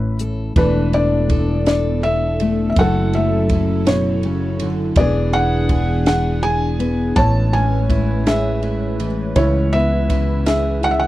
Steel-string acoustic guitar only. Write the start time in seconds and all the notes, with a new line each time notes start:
Already playing: A2 E3 C#4 E4 A4
0.21 A4
0.56 E3 A3 D4 A4
0.95 D4
1.31 A4
1.68 A4
2.05 A4
2.41 A3
2.78 F#2 F#3 A3 E4 A4
3.16 A3
3.53 E4
3.87 B2
4.25 C#3
4.62 D3
4.98 E3 B3 D4 G#4
5.35 D4
5.71 G#4
6.08 G#4
6.44 G#4
6.79 B3
7.16 A2
7.53 C#4
7.90 E4
8.27 G#4
8.63 E4
9.00 E3
9.37 C#3
9.74 B3
10.10 E4
10.47 G#4
10.83 E4